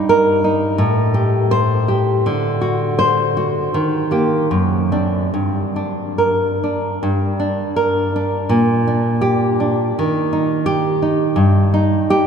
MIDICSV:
0, 0, Header, 1, 2, 480
1, 0, Start_track
1, 0, Key_signature, -2, "minor"
1, 0, Tempo, 704225
1, 541, Time_signature, 2, 2, 24, 8
1, 1028, Tempo, 737101
1, 2468, Tempo, 780234
1, 2948, Tempo, 846262
1, 4388, Tempo, 729927
1, 6308, Tempo, 713436
1, 7863, End_track
2, 0, Start_track
2, 0, Title_t, "Nylon-string guitar"
2, 0, Program_c, 0, 24
2, 0, Note_on_c, 0, 43, 61
2, 0, Note_on_c, 0, 63, 52
2, 63, Note_on_c, 0, 70, 72
2, 294, Note_off_c, 0, 63, 0
2, 302, Note_on_c, 0, 63, 53
2, 444, Note_off_c, 0, 70, 0
2, 523, Note_off_c, 0, 43, 0
2, 534, Note_on_c, 0, 45, 64
2, 539, Note_off_c, 0, 63, 0
2, 779, Note_on_c, 0, 67, 54
2, 1031, Note_on_c, 0, 72, 74
2, 1264, Note_off_c, 0, 67, 0
2, 1272, Note_on_c, 0, 67, 53
2, 1416, Note_off_c, 0, 72, 0
2, 1482, Note_off_c, 0, 45, 0
2, 1512, Note_off_c, 0, 67, 0
2, 1518, Note_on_c, 0, 50, 63
2, 1748, Note_on_c, 0, 66, 51
2, 1990, Note_on_c, 0, 72, 73
2, 2231, Note_off_c, 0, 66, 0
2, 2239, Note_on_c, 0, 66, 49
2, 2373, Note_off_c, 0, 72, 0
2, 2445, Note_off_c, 0, 50, 0
2, 2474, Note_off_c, 0, 66, 0
2, 2483, Note_on_c, 0, 51, 56
2, 2708, Note_on_c, 0, 58, 44
2, 2713, Note_on_c, 0, 67, 57
2, 2926, Note_off_c, 0, 58, 0
2, 2929, Note_off_c, 0, 67, 0
2, 2940, Note_off_c, 0, 51, 0
2, 2953, Note_on_c, 0, 42, 54
2, 3186, Note_on_c, 0, 60, 37
2, 3187, Note_on_c, 0, 62, 54
2, 3405, Note_off_c, 0, 60, 0
2, 3405, Note_off_c, 0, 62, 0
2, 3415, Note_off_c, 0, 42, 0
2, 3423, Note_on_c, 0, 43, 48
2, 3663, Note_on_c, 0, 62, 38
2, 3903, Note_on_c, 0, 70, 51
2, 4152, Note_off_c, 0, 62, 0
2, 4159, Note_on_c, 0, 62, 38
2, 4292, Note_off_c, 0, 70, 0
2, 4361, Note_off_c, 0, 43, 0
2, 4382, Note_on_c, 0, 43, 57
2, 4388, Note_off_c, 0, 62, 0
2, 4623, Note_on_c, 0, 62, 49
2, 4865, Note_on_c, 0, 70, 63
2, 5116, Note_off_c, 0, 62, 0
2, 5124, Note_on_c, 0, 62, 46
2, 5253, Note_off_c, 0, 70, 0
2, 5324, Note_off_c, 0, 43, 0
2, 5345, Note_on_c, 0, 46, 63
2, 5356, Note_off_c, 0, 62, 0
2, 5596, Note_on_c, 0, 62, 48
2, 5819, Note_on_c, 0, 67, 63
2, 6065, Note_off_c, 0, 62, 0
2, 6073, Note_on_c, 0, 62, 47
2, 6207, Note_off_c, 0, 67, 0
2, 6277, Note_off_c, 0, 46, 0
2, 6309, Note_off_c, 0, 62, 0
2, 6327, Note_on_c, 0, 51, 64
2, 6556, Note_on_c, 0, 63, 50
2, 6780, Note_on_c, 0, 67, 74
2, 7017, Note_off_c, 0, 63, 0
2, 7025, Note_on_c, 0, 63, 48
2, 7163, Note_off_c, 0, 67, 0
2, 7243, Note_off_c, 0, 51, 0
2, 7250, Note_on_c, 0, 43, 63
2, 7264, Note_off_c, 0, 63, 0
2, 7505, Note_on_c, 0, 63, 55
2, 7751, Note_on_c, 0, 67, 77
2, 7863, Note_off_c, 0, 43, 0
2, 7863, Note_off_c, 0, 63, 0
2, 7863, Note_off_c, 0, 67, 0
2, 7863, End_track
0, 0, End_of_file